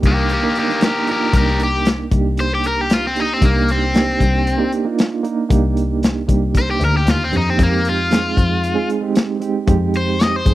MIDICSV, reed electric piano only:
0, 0, Header, 1, 2, 480
1, 0, Start_track
1, 0, Key_signature, -3, "minor"
1, 0, Tempo, 521739
1, 1227, Time_signature, 4, 2, 24, 8
1, 9697, End_track
2, 0, Start_track
2, 0, Title_t, "Reed electric piano"
2, 0, Program_c, 0, 4
2, 0, Note_on_c, 0, 58, 80
2, 0, Note_on_c, 0, 62, 77
2, 0, Note_on_c, 0, 63, 76
2, 0, Note_on_c, 0, 67, 89
2, 349, Note_off_c, 0, 58, 0
2, 352, Note_off_c, 0, 62, 0
2, 357, Note_off_c, 0, 63, 0
2, 359, Note_off_c, 0, 67, 0
2, 386, Note_on_c, 0, 58, 77
2, 391, Note_on_c, 0, 62, 67
2, 397, Note_on_c, 0, 63, 68
2, 403, Note_on_c, 0, 70, 88
2, 609, Note_off_c, 0, 58, 0
2, 616, Note_off_c, 0, 62, 0
2, 619, Note_off_c, 0, 63, 0
2, 620, Note_on_c, 0, 58, 78
2, 622, Note_off_c, 0, 70, 0
2, 627, Note_on_c, 0, 62, 68
2, 632, Note_on_c, 0, 63, 71
2, 639, Note_on_c, 0, 70, 80
2, 963, Note_off_c, 0, 58, 0
2, 966, Note_off_c, 0, 62, 0
2, 969, Note_off_c, 0, 63, 0
2, 973, Note_off_c, 0, 70, 0
2, 982, Note_on_c, 0, 58, 74
2, 990, Note_on_c, 0, 62, 68
2, 991, Note_on_c, 0, 63, 68
2, 999, Note_on_c, 0, 65, 76
2, 1208, Note_off_c, 0, 58, 0
2, 1215, Note_off_c, 0, 62, 0
2, 1215, Note_off_c, 0, 63, 0
2, 1219, Note_on_c, 0, 58, 71
2, 1220, Note_off_c, 0, 65, 0
2, 1226, Note_on_c, 0, 62, 64
2, 1231, Note_on_c, 0, 63, 64
2, 1237, Note_on_c, 0, 70, 80
2, 1901, Note_off_c, 0, 58, 0
2, 1905, Note_off_c, 0, 62, 0
2, 1908, Note_off_c, 0, 63, 0
2, 1911, Note_off_c, 0, 70, 0
2, 1941, Note_on_c, 0, 58, 83
2, 1946, Note_on_c, 0, 62, 80
2, 1950, Note_on_c, 0, 63, 76
2, 1956, Note_on_c, 0, 67, 89
2, 2849, Note_off_c, 0, 58, 0
2, 2851, Note_off_c, 0, 62, 0
2, 2853, Note_off_c, 0, 63, 0
2, 2856, Note_off_c, 0, 67, 0
2, 2895, Note_on_c, 0, 58, 73
2, 2901, Note_on_c, 0, 62, 62
2, 2905, Note_on_c, 0, 63, 65
2, 2908, Note_on_c, 0, 67, 75
2, 3127, Note_off_c, 0, 58, 0
2, 3130, Note_off_c, 0, 62, 0
2, 3132, Note_off_c, 0, 63, 0
2, 3133, Note_off_c, 0, 67, 0
2, 3140, Note_on_c, 0, 58, 75
2, 3147, Note_on_c, 0, 62, 76
2, 3149, Note_on_c, 0, 63, 75
2, 3155, Note_on_c, 0, 67, 85
2, 3595, Note_off_c, 0, 58, 0
2, 3599, Note_off_c, 0, 62, 0
2, 3600, Note_off_c, 0, 63, 0
2, 3603, Note_off_c, 0, 67, 0
2, 3616, Note_on_c, 0, 58, 76
2, 3620, Note_on_c, 0, 62, 69
2, 3627, Note_on_c, 0, 63, 67
2, 3632, Note_on_c, 0, 67, 83
2, 4187, Note_off_c, 0, 58, 0
2, 4189, Note_off_c, 0, 62, 0
2, 4192, Note_off_c, 0, 63, 0
2, 4195, Note_off_c, 0, 67, 0
2, 4211, Note_on_c, 0, 58, 91
2, 4218, Note_on_c, 0, 62, 85
2, 4223, Note_on_c, 0, 63, 85
2, 4228, Note_on_c, 0, 67, 108
2, 4445, Note_off_c, 0, 58, 0
2, 4448, Note_off_c, 0, 62, 0
2, 4451, Note_off_c, 0, 63, 0
2, 4453, Note_off_c, 0, 67, 0
2, 4458, Note_on_c, 0, 58, 93
2, 4465, Note_on_c, 0, 62, 81
2, 4471, Note_on_c, 0, 63, 89
2, 4475, Note_on_c, 0, 65, 105
2, 4801, Note_off_c, 0, 58, 0
2, 4804, Note_off_c, 0, 62, 0
2, 4807, Note_off_c, 0, 63, 0
2, 4810, Note_off_c, 0, 65, 0
2, 4814, Note_on_c, 0, 58, 83
2, 4816, Note_on_c, 0, 62, 78
2, 4821, Note_on_c, 0, 63, 81
2, 4828, Note_on_c, 0, 70, 94
2, 5036, Note_off_c, 0, 58, 0
2, 5041, Note_off_c, 0, 62, 0
2, 5045, Note_off_c, 0, 63, 0
2, 5047, Note_on_c, 0, 58, 84
2, 5052, Note_on_c, 0, 62, 81
2, 5053, Note_off_c, 0, 70, 0
2, 5056, Note_on_c, 0, 63, 79
2, 5062, Note_on_c, 0, 67, 96
2, 5735, Note_off_c, 0, 58, 0
2, 5738, Note_off_c, 0, 62, 0
2, 5740, Note_off_c, 0, 63, 0
2, 5743, Note_off_c, 0, 67, 0
2, 5767, Note_on_c, 0, 58, 79
2, 5774, Note_on_c, 0, 62, 75
2, 5778, Note_on_c, 0, 63, 80
2, 5782, Note_on_c, 0, 67, 89
2, 6682, Note_off_c, 0, 58, 0
2, 6685, Note_off_c, 0, 62, 0
2, 6687, Note_off_c, 0, 63, 0
2, 6689, Note_off_c, 0, 67, 0
2, 6722, Note_on_c, 0, 58, 65
2, 6730, Note_on_c, 0, 62, 62
2, 6736, Note_on_c, 0, 63, 63
2, 6742, Note_on_c, 0, 67, 74
2, 6960, Note_off_c, 0, 58, 0
2, 6964, Note_off_c, 0, 62, 0
2, 6965, Note_on_c, 0, 56, 73
2, 6967, Note_off_c, 0, 63, 0
2, 6970, Note_off_c, 0, 67, 0
2, 6971, Note_on_c, 0, 60, 73
2, 6978, Note_on_c, 0, 63, 74
2, 6983, Note_on_c, 0, 67, 85
2, 7428, Note_off_c, 0, 56, 0
2, 7431, Note_off_c, 0, 60, 0
2, 7435, Note_off_c, 0, 63, 0
2, 7437, Note_off_c, 0, 67, 0
2, 7447, Note_on_c, 0, 56, 68
2, 7456, Note_on_c, 0, 60, 65
2, 7458, Note_on_c, 0, 63, 64
2, 7462, Note_on_c, 0, 68, 79
2, 8023, Note_off_c, 0, 56, 0
2, 8027, Note_off_c, 0, 60, 0
2, 8028, Note_off_c, 0, 63, 0
2, 8030, Note_off_c, 0, 68, 0
2, 8039, Note_on_c, 0, 56, 90
2, 8045, Note_on_c, 0, 60, 80
2, 8050, Note_on_c, 0, 63, 82
2, 8053, Note_on_c, 0, 68, 106
2, 8279, Note_off_c, 0, 56, 0
2, 8282, Note_off_c, 0, 60, 0
2, 8285, Note_off_c, 0, 63, 0
2, 8286, Note_off_c, 0, 68, 0
2, 8290, Note_on_c, 0, 56, 90
2, 8296, Note_on_c, 0, 60, 78
2, 8303, Note_on_c, 0, 63, 80
2, 8310, Note_on_c, 0, 67, 104
2, 8637, Note_off_c, 0, 56, 0
2, 8638, Note_off_c, 0, 60, 0
2, 8644, Note_off_c, 0, 63, 0
2, 8647, Note_off_c, 0, 67, 0
2, 8648, Note_on_c, 0, 56, 90
2, 8649, Note_on_c, 0, 60, 78
2, 8658, Note_on_c, 0, 63, 82
2, 8665, Note_on_c, 0, 67, 95
2, 8879, Note_off_c, 0, 56, 0
2, 8884, Note_off_c, 0, 60, 0
2, 8889, Note_off_c, 0, 63, 0
2, 8890, Note_on_c, 0, 56, 82
2, 8892, Note_off_c, 0, 67, 0
2, 8898, Note_on_c, 0, 60, 78
2, 8901, Note_on_c, 0, 63, 77
2, 8910, Note_on_c, 0, 67, 96
2, 9578, Note_off_c, 0, 56, 0
2, 9581, Note_off_c, 0, 60, 0
2, 9583, Note_off_c, 0, 63, 0
2, 9588, Note_off_c, 0, 67, 0
2, 9611, Note_on_c, 0, 56, 75
2, 9617, Note_on_c, 0, 60, 66
2, 9623, Note_on_c, 0, 63, 66
2, 9627, Note_on_c, 0, 68, 81
2, 9697, Note_off_c, 0, 56, 0
2, 9697, Note_off_c, 0, 60, 0
2, 9697, Note_off_c, 0, 63, 0
2, 9697, Note_off_c, 0, 68, 0
2, 9697, End_track
0, 0, End_of_file